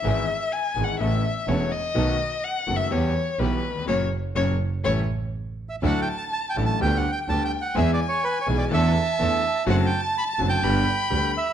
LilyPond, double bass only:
\new Staff \with { instrumentName = "Double bass" } { \clef bass \time 4/4 \key a \mixolydian \tempo 4 = 125 gis,,8 r4 gis,,8 a,,8 r8 e,,8 r8 | b,,8 r4 fis,,8 e,8 r8 b,,8 r8 | fis,,8 r8 fis,,8 r8 a,,8 r4. | \key d \major d,8 r4 a,,8 d,8 r8 d,8 r8 |
e,8 r4 b,,8 e,8 r8 e,8 r8 | fis,,8 r4 fis,,8 g,,8 r8 d,8 r8 | }